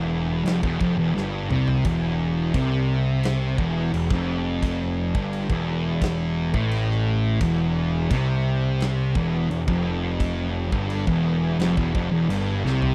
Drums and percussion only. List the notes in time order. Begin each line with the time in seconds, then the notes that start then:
0.46 snare, crash
0.63 kick
0.81 kick
1.17 snare
1.50 mid tom
1.67 floor tom
1.85 kick, crash
2.54 kick, crash
3.23 snare, crash
3.58 kick
3.94 crash
4.11 kick, snare
4.63 kick, crash
5.15 kick
5.33 crash
5.50 kick
6.02 kick, snare, crash
6.54 kick
6.71 crash
6.91 snare
7.41 kick, crash
8.11 kick, crash
8.80 snare, crash
9.15 kick
9.51 crash
9.68 kick
10.20 kick, crash
10.72 kick
10.90 crash
11.07 kick
11.60 snare, crash
11.77 kick
11.95 kick
12.30 crash
12.67 snare
12.82 floor tom